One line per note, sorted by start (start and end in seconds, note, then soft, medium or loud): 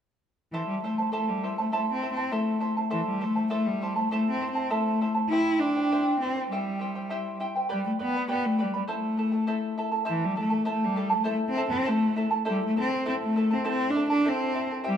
0.52 0.67 E3 medium
0.52 0.83 E4 medium
0.52 0.84 A4 medium
0.52 0.83 C5 medium
0.52 0.83 E5 medium
0.52 0.84 A5 medium
0.67 0.82 G3 medium
0.83 1.11 A3 medium
0.83 0.99 E4 soft
0.83 0.98 C5 medium
0.83 0.99 E5 soft
0.83 0.97 A5 medium
0.98 1.12 E4 soft
0.98 1.12 C5 soft
0.98 1.11 A5 soft
1.12 1.30 A3 medium
1.12 1.42 E4 medium
1.12 1.42 A4 medium
1.12 1.43 C5 medium
1.12 1.42 E5 medium
1.12 1.43 A5 medium
1.29 1.58 G3 medium
1.43 1.58 E4 medium
1.43 1.58 C5 medium
1.43 1.58 E5 medium
1.43 1.57 A5 medium
1.58 1.73 A3 medium
1.58 1.72 E4 soft
1.58 1.72 C5 soft
1.58 1.71 A5 soft
1.72 1.92 A3 medium
1.72 2.01 E4 medium
1.72 2.02 A4 medium
1.72 2.01 C5 medium
1.72 2.00 E5 medium
1.72 2.02 A5 medium
1.93 2.11 C4 medium
2.01 2.17 E4 medium
2.01 2.17 C5 soft
2.01 2.17 E5 soft
2.01 2.16 A5 medium
2.13 2.34 C4 medium
2.13 2.31 A5 soft
2.18 2.31 E4 soft
2.18 2.31 C5 soft
2.32 2.77 A3 medium
2.32 2.60 E4 medium
2.32 2.61 A4 medium
2.32 2.60 C5 medium
2.32 2.59 E5 medium
2.32 2.60 A5 medium
2.60 2.77 E4 medium
2.60 2.77 C5 medium
2.60 2.76 E5 medium
2.60 2.76 A5 medium
2.77 2.90 E4 soft
2.77 2.90 C5 soft
2.77 2.90 A5 soft
2.90 3.06 E3 medium
2.90 3.20 E4 medium
2.90 3.21 A4 medium
2.90 3.20 C5 medium
2.90 3.19 E5 medium
2.90 3.20 A5 medium
3.07 3.25 G3 medium
3.21 3.51 A3 medium
3.21 3.36 E4 soft
3.21 3.35 C5 medium
3.21 3.36 E5 soft
3.21 3.34 A5 medium
3.36 3.49 E4 soft
3.36 3.50 C5 soft
3.36 3.50 A5 soft
3.50 3.68 A3 medium
3.50 3.81 E4 medium
3.50 3.81 A4 medium
3.50 3.81 C5 medium
3.50 3.81 E5 medium
3.50 3.81 A5 medium
3.66 3.99 G3 medium
3.82 3.96 E4 medium
3.82 3.96 C5 medium
3.82 3.97 E5 medium
3.82 3.95 A5 medium
3.96 4.11 A3 medium
3.96 4.11 E4 soft
3.96 4.11 C5 soft
3.96 4.11 A5 soft
4.11 4.30 A3 medium
4.11 4.40 E4 medium
4.11 4.41 A4 medium
4.11 4.41 C5 medium
4.11 4.40 E5 medium
4.11 4.41 A5 medium
4.30 4.49 C4 medium
4.41 4.56 E4 medium
4.41 4.55 C5 medium
4.41 4.56 E5 soft
4.41 4.54 A5 medium
4.51 4.73 C4 medium
4.55 4.69 E4 soft
4.55 4.70 C5 soft
4.55 4.70 A5 soft
4.70 5.16 A3 medium
4.70 5.00 E4 medium
4.70 5.01 A4 medium
4.70 5.00 C5 medium
4.70 5.00 E5 medium
4.70 5.01 A5 medium
5.01 5.16 E4 medium
5.01 5.14 C5 medium
5.01 5.16 E5 medium
5.01 5.13 A5 medium
5.15 5.31 E4 soft
5.15 5.31 C5 soft
5.15 5.30 A5 soft
5.30 5.61 E4 medium
5.30 5.60 E4 medium
5.30 5.61 G4 medium
5.30 5.60 C5 medium
5.30 5.59 E5 medium
5.30 5.61 G5 medium
5.60 6.20 D4 medium
5.60 5.76 E4 soft
5.60 5.75 C5 medium
5.60 5.75 E5 soft
5.60 5.75 G5 medium
5.76 5.91 E4 soft
5.76 5.91 C5 soft
5.76 5.91 G5 soft
5.92 6.21 E4 medium
5.92 6.21 G4 medium
5.92 6.21 C5 medium
5.92 6.20 E5 medium
5.92 6.21 G5 medium
6.20 6.48 C4 medium
6.20 6.36 E4 medium
6.20 6.35 C5 soft
6.20 6.35 E5 medium
6.20 6.35 G5 medium
6.36 6.51 E4 soft
6.36 6.51 C5 soft
6.36 6.50 G5 soft
6.51 7.36 G3 medium
6.51 6.79 E4 medium
6.51 6.80 G4 medium
6.51 6.80 C5 medium
6.51 6.78 E5 medium
6.51 6.80 G5 medium
6.79 6.95 E4 medium
6.79 6.94 C5 soft
6.79 6.94 E5 soft
6.79 6.94 G5 medium
6.95 7.10 E4 soft
6.95 7.09 C5 soft
6.95 7.10 G5 soft
7.10 7.39 E4 medium
7.10 7.40 G4 medium
7.10 7.39 C5 medium
7.10 7.39 E5 medium
7.10 7.40 G5 medium
7.40 7.55 E4 medium
7.40 7.55 C5 medium
7.40 7.55 E5 medium
7.40 7.54 G5 medium
7.56 7.69 E4 soft
7.56 7.69 C5 soft
7.56 7.68 G5 soft
7.69 7.85 G3 medium
7.69 7.99 G4 medium
7.69 7.98 B4 medium
7.69 7.99 D5 medium
7.69 7.98 G5 medium
7.69 7.99 B5 medium
7.86 7.92 A3 medium
7.99 8.28 B3 medium
7.99 8.14 B4 medium
7.99 8.13 D5 medium
7.99 8.14 G5 soft
7.99 8.12 B5 medium
8.13 8.27 B4 soft
8.13 8.28 D5 soft
8.13 8.28 B5 soft
8.28 8.47 B3 medium
8.28 8.58 G4 medium
8.28 8.58 B4 medium
8.28 8.59 D5 medium
8.28 8.57 G5 medium
8.28 8.59 B5 medium
8.45 8.64 A3 medium
8.58 8.75 G3 medium
8.58 8.74 B4 medium
8.58 8.73 D5 medium
8.58 8.73 G5 medium
8.58 8.73 B5 medium
8.74 8.82 G3 medium
8.74 8.88 B4 soft
8.74 8.88 D5 soft
8.74 8.88 B5 soft
8.87 9.75 A3 medium
8.87 9.17 E4 medium
8.87 9.18 A4 medium
8.87 9.18 C5 medium
8.87 9.16 E5 medium
8.87 9.18 A5 medium
9.17 9.32 E4 medium
9.17 9.32 A4 medium
9.17 9.31 E5 soft
9.17 9.31 A5 medium
9.32 9.46 E4 soft
9.32 9.47 A4 soft
9.32 9.46 A5 soft
9.47 9.77 E4 medium
9.47 9.77 A4 medium
9.47 9.77 C5 medium
9.47 9.76 E5 medium
9.47 9.77 A5 medium
9.78 9.91 E4 medium
9.78 9.91 A4 medium
9.78 9.91 E5 medium
9.78 9.90 A5 medium
9.92 10.04 E4 soft
9.92 10.05 A4 soft
9.92 10.05 A5 soft
10.05 10.35 E4 medium
10.05 10.35 A4 medium
10.05 10.36 C5 medium
10.05 10.34 E5 medium
10.05 10.36 A5 medium
10.09 10.26 E3 medium
10.25 10.39 G3 medium
10.36 10.51 E4 medium
10.36 10.50 A4 medium
10.36 10.50 E5 medium
10.36 10.49 A5 medium
10.40 10.67 A3 medium
10.50 10.64 E4 soft
10.50 10.65 A4 soft
10.50 10.65 A5 soft
10.65 10.95 E4 medium
10.65 10.95 A4 medium
10.65 10.96 C5 medium
10.65 10.95 E5 medium
10.65 10.96 A5 medium
10.70 10.86 A3 medium
10.85 11.16 G3 medium
10.96 11.10 E4 medium
10.96 11.10 A4 medium
10.96 11.09 E5 medium
10.96 11.09 A5 medium
11.10 11.24 E4 soft
11.10 11.24 A4 soft
11.10 11.24 A5 soft
11.14 11.28 A3 medium
11.24 11.55 E4 medium
11.24 11.56 A4 medium
11.24 11.55 C5 medium
11.24 11.54 E5 medium
11.24 11.56 A5 medium
11.29 11.38 A3 medium
11.50 11.67 C4 medium
11.56 11.71 E4 soft
11.56 11.70 A4 medium
11.56 11.70 E5 medium
11.56 11.69 A5 medium
11.69 11.90 C4 medium
11.69 11.84 E4 soft
11.69 11.84 A4 soft
11.69 11.85 A5 soft
11.85 12.32 A3 medium
11.85 12.15 E4 medium
11.85 12.16 A4 medium
11.85 12.16 C5 medium
11.85 12.15 E5 medium
11.85 12.16 A5 medium
12.16 12.30 E4 medium
12.16 12.30 A4 medium
12.16 12.30 E5 medium
12.16 12.29 A5 medium
12.31 12.45 E4 soft
12.31 12.45 A4 soft
12.31 12.45 A5 soft
12.45 12.75 E4 medium
12.45 12.76 A4 medium
12.45 12.76 C5 medium
12.45 12.75 E5 medium
12.45 12.76 A5 medium
12.49 12.62 G3 medium
12.66 12.78 A3 medium
12.76 13.06 C4 medium
12.76 12.91 E4 medium
12.76 12.91 A4 medium
12.76 12.91 E5 soft
12.76 12.90 A5 medium
12.91 13.05 E4 soft
12.91 13.05 A4 soft
12.91 13.05 A5 soft
13.06 13.15 C4 medium
13.06 13.35 E4 medium
13.06 13.36 A4 medium
13.06 13.36 C5 medium
13.06 13.35 E5 medium
13.06 13.36 A5 medium
13.24 13.55 A3 medium
13.36 13.51 E4 medium
13.36 13.50 A4 medium
13.36 13.50 E5 medium
13.36 13.49 A5 medium
13.51 13.67 C4 medium
13.51 13.64 E4 soft
13.51 13.64 A4 soft
13.51 13.64 A5 soft
13.64 13.94 E4 medium
13.64 13.95 A4 medium
13.64 13.95 C5 medium
13.64 13.93 E5 medium
13.64 13.95 A5 medium
13.68 13.92 C4 medium
13.90 14.08 D4 medium
13.94 14.10 E4 medium
13.94 14.09 A4 medium
13.94 14.09 E5 medium
13.94 14.09 A5 medium
14.09 14.30 D4 medium
14.09 14.24 E4 soft
14.09 14.24 A4 soft
14.09 14.24 A5 soft
14.24 14.72 C4 medium
14.24 14.53 E4 medium
14.24 14.54 A4 medium
14.24 14.55 C5 medium
14.24 14.53 E5 medium
14.24 14.54 A5 medium
14.54 14.70 E4 medium
14.54 14.70 A4 medium
14.54 14.70 E5 medium
14.54 14.70 A5 medium
14.71 14.83 E4 soft
14.71 14.84 A4 soft
14.71 14.84 A5 soft
14.83 14.97 E4 medium
14.83 14.97 G4 medium
14.83 14.97 C5 medium
14.83 14.97 E5 medium
14.83 14.97 G5 medium
14.88 14.97 G3 medium